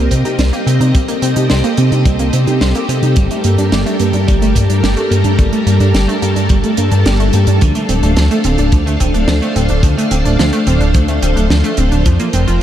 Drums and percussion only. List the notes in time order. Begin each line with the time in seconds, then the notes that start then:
0.11 kick, closed hi-hat
0.25 closed hi-hat
0.39 snare, closed hi-hat
0.53 closed hi-hat
0.67 closed hi-hat
0.81 closed hi-hat
0.95 kick, closed hi-hat
1.08 closed hi-hat
1.22 closed hi-hat
1.36 closed hi-hat
1.50 snare, closed hi-hat
1.64 closed hi-hat
1.77 closed hi-hat
1.92 closed hi-hat
2.06 kick, closed hi-hat
2.19 closed hi-hat
2.33 closed hi-hat
2.47 closed hi-hat
2.61 snare, closed hi-hat
2.75 closed hi-hat
2.89 closed hi-hat
3.03 closed hi-hat
3.16 kick, closed hi-hat
3.31 closed hi-hat
3.44 closed hi-hat
3.58 closed hi-hat
3.72 snare, closed hi-hat
3.86 closed hi-hat
4.00 closed hi-hat
4.13 closed hi-hat
4.28 kick, closed hi-hat
4.42 closed hi-hat
4.55 kick, closed hi-hat
4.70 closed hi-hat
4.84 snare, closed hi-hat
4.97 closed hi-hat
5.12 closed hi-hat
5.24 closed hi-hat
5.39 kick, closed hi-hat
5.53 closed hi-hat
5.67 closed hi-hat
5.80 closed hi-hat
5.95 snare, closed hi-hat
6.09 closed hi-hat
6.22 closed hi-hat
6.36 closed hi-hat
6.49 kick, closed hi-hat
6.64 closed hi-hat
6.77 closed hi-hat
6.91 closed hi-hat
7.06 snare, closed hi-hat
7.20 closed hi-hat
7.33 closed hi-hat
7.47 closed hi-hat
7.61 kick, closed hi-hat
7.75 closed hi-hat
7.89 closed hi-hat
8.03 closed hi-hat
8.16 snare, closed hi-hat
8.31 closed hi-hat
8.44 closed hi-hat
8.58 closed hi-hat
8.72 kick, closed hi-hat
8.87 closed hi-hat
9.00 kick, closed hi-hat
9.14 closed hi-hat
9.28 snare, closed hi-hat
9.42 closed hi-hat
9.56 closed hi-hat
9.69 closed hi-hat
9.83 kick, closed hi-hat
9.98 closed hi-hat
10.11 closed hi-hat
10.25 closed hi-hat
10.39 snare, closed hi-hat
10.53 closed hi-hat
10.67 closed hi-hat
10.81 closed hi-hat
10.94 kick, closed hi-hat
11.08 closed hi-hat
11.23 closed hi-hat
11.37 closed hi-hat
11.50 snare, closed hi-hat
11.64 closed hi-hat
11.77 closed hi-hat
11.92 closed hi-hat
12.06 kick, closed hi-hat
12.20 closed hi-hat
12.33 closed hi-hat
12.48 closed hi-hat